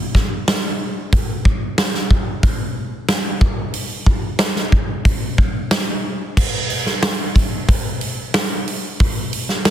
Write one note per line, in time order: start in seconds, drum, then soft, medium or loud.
0.15 kick medium
0.15 snare soft
0.48 snare loud
0.48 open hi-hat medium
1.13 kick loud
1.13 open hi-hat soft
1.45 kick medium
1.78 snare medium
1.78 open hi-hat soft
1.94 snare soft
2.11 kick medium
2.43 kick loud
2.43 open hi-hat medium
3.08 snare medium
3.08 open hi-hat medium
3.41 kick loud
3.74 open hi-hat medium
4.06 kick medium
4.39 snare loud
4.39 open hi-hat medium
4.56 snare soft
4.72 kick medium
5.05 kick loud
5.05 open hi-hat medium
5.38 kick medium
5.71 snare loud
5.71 open hi-hat medium
6.37 kick loud
6.37 crash loud
6.70 open hi-hat medium
6.86 snare soft
7.03 snare loud
7.03 open hi-hat medium
7.36 kick medium
7.36 open hi-hat medium
7.69 kick loud
7.69 open hi-hat medium
8.01 open hi-hat medium
8.34 snare loud
8.34 open hi-hat medium
8.68 open hi-hat medium
9.00 kick loud
9.00 open hi-hat medium
9.33 open hi-hat medium
9.49 snare soft
9.65 snare loud
9.65 open hi-hat medium